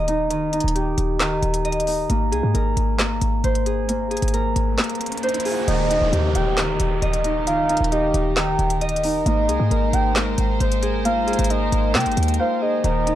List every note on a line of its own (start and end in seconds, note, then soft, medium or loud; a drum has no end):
0.00 0.61 D#1 loud
0.00 0.29 D#3 medium
0.00 0.84 A#3 loud
0.00 0.75 G4 medium
0.00 1.64 D#5 loud
0.08 0.53 D#4 medium
0.08 closed hi-hat medium
0.30 1.19 D#3 medium
0.30 closed hi-hat medium
0.53 1.87 D#4 medium
0.53 closed hi-hat medium
0.60 0.96 D#1 loud
0.60 closed hi-hat medium
0.68 closed hi-hat medium
0.75 2.38 G4 medium
0.75 closed hi-hat medium
0.98 1.41 D#1 loud
0.98 closed hi-hat medium
1.20 2.15 D#3 medium
1.20 snare loud
1.20 clap medium
1.20 closed hi-hat medium
1.43 2.07 D#1 loud
1.43 closed hi-hat medium
1.54 closed hi-hat loud
1.65 3.43 D#5 medium
1.65 closed hi-hat medium
1.72 closed hi-hat medium
1.80 closed hi-hat medium
1.87 4.58 D#4 medium
1.87 open hi-hat medium
2.10 2.34 G#1 loud
2.10 2.99 A#3 loud
2.10 closed hi-hat medium
2.32 2.43 C2 loud
2.32 3.66 G#4 medium
2.32 closed hi-hat medium
2.43 2.54 G#2 loud
2.54 2.76 G#1 loud
2.54 4.33 A#4 medium
2.54 closed hi-hat medium
2.77 3.20 G#1 loud
2.77 closed hi-hat medium
2.99 3.88 A#3 loud
2.99 snare loud
2.99 clap medium
2.99 closed hi-hat medium
3.21 3.43 G#1 loud
3.21 closed hi-hat medium
3.44 4.19 G#1 loud
3.44 5.23 C5 medium
3.44 closed hi-hat medium
3.55 closed hi-hat medium
3.66 4.10 G#4 medium
3.66 closed hi-hat medium
3.89 4.78 A#3 medium
3.89 closed hi-hat medium
3.89 riser medium
4.11 5.45 G#4 medium
4.11 closed hi-hat soft
4.17 closed hi-hat medium
4.22 4.55 G#1 loud
4.22 closed hi-hat medium
4.28 closed hi-hat medium
4.34 6.46 A#4 medium
4.34 closed hi-hat medium
4.56 4.78 G#1 loud
4.56 closed hi-hat medium
4.78 8.00 A#3 medium
4.78 snare loud
4.78 clap medium
4.78 closed hi-hat medium
4.84 closed hi-hat medium
4.89 closed hi-hat medium
4.95 closed hi-hat soft
5.01 closed hi-hat medium
5.06 closed hi-hat medium
5.12 closed hi-hat medium
5.17 closed hi-hat medium
5.23 7.21 C5 loud
5.23 closed hi-hat soft
5.29 closed hi-hat medium
5.34 closed hi-hat medium
5.40 closed hi-hat medium
5.45 6.19 G#4 medium
5.45 open hi-hat medium
5.68 6.00 D#1 loud
5.68 9.22 D#3 medium
5.68 6.57 D#3 loud
5.68 9.22 D#4 medium
5.68 9.23 G4 medium
5.68 13.15 A#4 medium
5.68 6.31 D#5 loud
5.68 closed hi-hat medium
5.68 downlifter medium
5.90 7.24 D#4 medium
5.90 closed hi-hat medium
6.01 6.12 D#1 loud
6.13 6.34 D#2 loud
6.13 7.91 G4 medium
6.13 closed hi-hat medium
6.35 6.78 D#1 loud
6.35 6.56 G5 medium
6.35 closed hi-hat medium
6.57 7.45 D#3 medium
6.57 snare loud
6.57 clap medium
6.57 closed hi-hat medium
6.80 7.01 D#1 loud
6.80 closed hi-hat loud
7.02 7.77 D#1 loud
7.02 8.81 D#5 loud
7.02 closed hi-hat medium
7.13 closed hi-hat medium
7.24 7.69 D#4 medium
7.24 closed hi-hat medium
7.47 8.35 D#3 loud
7.47 7.89 F5 loud
7.47 closed hi-hat medium
7.69 9.04 D#4 medium
7.69 closed hi-hat medium
7.77 8.13 D#1 loud
7.77 closed hi-hat medium
7.84 closed hi-hat medium
7.92 9.54 G4 medium
7.92 8.34 D#5 medium
7.92 closed hi-hat medium
8.14 8.57 D#1 loud
8.14 closed hi-hat medium
8.36 9.31 D#3 loud
8.36 8.79 G5 medium
8.36 snare loud
8.36 clap medium
8.36 closed hi-hat medium
8.59 9.23 D#1 loud
8.59 closed hi-hat medium
8.70 closed hi-hat loud
8.81 10.59 D#5 loud
8.81 closed hi-hat medium
8.89 closed hi-hat medium
8.96 closed hi-hat medium
9.03 11.74 D#4 medium
9.03 open hi-hat medium
9.26 9.50 G#1 loud
9.26 12.81 G#3 medium
9.26 10.15 A#3 loud
9.26 13.15 D#4 medium
9.26 12.81 C5 medium
9.26 9.89 D#5 loud
9.26 closed hi-hat medium
9.48 9.59 C2 loud
9.48 10.82 G#4 medium
9.48 closed hi-hat medium
9.60 9.70 G#2 loud
9.71 9.92 G#1 loud
9.71 11.50 A#4 medium
9.71 closed hi-hat medium
9.93 10.36 G#1 loud
9.93 10.15 G5 medium
9.93 closed hi-hat medium
10.16 11.05 A#3 loud
10.16 snare loud
10.16 clap medium
10.16 closed hi-hat medium
10.38 10.60 G#1 loud
10.38 closed hi-hat loud
10.60 11.36 G#1 loud
10.60 12.39 C5 medium
10.60 closed hi-hat medium
10.72 closed hi-hat medium
10.83 11.26 G#4 medium
10.83 closed hi-hat medium
11.05 11.94 A#3 loud
11.05 11.47 F5 loud
11.05 closed hi-hat medium
11.27 12.61 G#4 medium
11.27 closed hi-hat soft
11.33 closed hi-hat medium
11.39 11.71 G#1 loud
11.39 closed hi-hat medium
11.44 closed hi-hat medium
11.50 13.15 A#4 loud
11.50 11.92 D#5 medium
11.50 closed hi-hat medium
11.72 11.96 G#1 loud
11.72 closed hi-hat medium
11.95 12.07 C3 loud
11.95 13.15 A#3 medium
11.95 12.37 G5 medium
11.95 snare loud
11.95 clap loud
11.95 closed hi-hat medium
12.00 closed hi-hat medium
12.06 12.17 G#1 loud
12.06 closed hi-hat medium
12.12 closed hi-hat soft
12.17 12.39 D#2 loud
12.17 closed hi-hat medium
12.23 closed hi-hat medium
12.28 closed hi-hat medium
12.34 closed hi-hat medium
12.40 13.15 C5 loud
12.40 12.61 F5 medium
12.62 13.15 G#4 medium
12.62 12.83 D#5 medium
12.84 13.15 D#1 loud
12.84 13.15 D#3 loud
12.84 13.15 D#3 medium
12.84 13.15 G4 medium
12.84 13.15 D#5 loud
12.84 closed hi-hat medium
13.07 13.15 D#4 medium
13.07 closed hi-hat medium